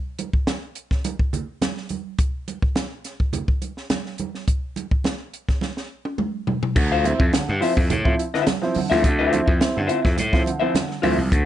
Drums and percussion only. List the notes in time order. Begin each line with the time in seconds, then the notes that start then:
0.19 closed hi-hat, muted conga
0.33 kick
0.47 snare, closed hi-hat, high conga
0.75 closed hi-hat
0.91 kick, snare
1.04 closed hi-hat, muted conga
1.19 kick
1.33 closed hi-hat, low conga
1.62 snare, closed hi-hat, high conga
1.77 snare
1.89 closed hi-hat, high conga
2.19 kick, closed hi-hat
2.48 closed hi-hat, muted conga
2.62 kick
2.76 snare, closed hi-hat, high conga
3.05 snare, closed hi-hat
3.20 kick
3.33 closed hi-hat, muted conga, low conga
3.48 kick
3.62 closed hi-hat, muted conga
3.77 snare
3.90 snare, closed hi-hat, high conga
4.06 snare
4.18 closed hi-hat, high conga
4.35 snare
4.48 kick, closed hi-hat
4.76 closed hi-hat, muted conga
4.91 kick
5.04 snare, closed hi-hat, high conga
5.34 closed hi-hat
5.49 kick, snare
5.61 snare, muted conga
5.77 snare
6.05 high tom
6.18 mid tom, high conga
6.47 floor tom, high conga
6.63 floor tom
6.76 kick, crash
7.04 closed hi-hat, muted conga
7.20 kick
7.33 snare, closed hi-hat, high conga
7.62 snare, open hi-hat
7.77 kick
7.90 closed hi-hat, muted conga, low conga
8.05 kick
8.19 closed hi-hat
8.34 snare
8.47 snare, closed hi-hat, high conga
8.62 snare
8.74 open hi-hat, high conga
8.91 snare
9.04 kick, closed hi-hat
9.33 closed hi-hat, muted conga
9.48 kick
9.61 snare, closed hi-hat, high conga
9.89 closed hi-hat
10.05 kick, snare
10.18 closed hi-hat, muted conga
10.33 kick, snare
10.46 closed hi-hat, muted conga
10.75 snare, closed hi-hat, high conga
10.91 snare
11.03 open hi-hat, high conga
11.32 kick, closed hi-hat